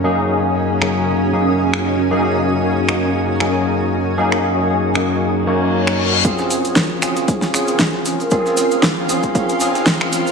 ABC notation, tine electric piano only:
X:1
M:4/4
L:1/8
Q:"Swing 16ths" 1/4=116
K:Bbm
V:1 name="Tine electric piano"
[G,,B,DEA]3 [G,,B,DEA]2 [G,,B,DEA]3 | [G,,B,DEA]3 [G,,B,DEA]2 [G,,B,DEA]3 | [G,,B,DEA]3 [G,,B,DEA]2 [G,,B,DEd]3 | [CDFA]3 [CDFA]2 [CDFA]3 |
[CDFA]3 [CDFA]2 [CDFA]3 |]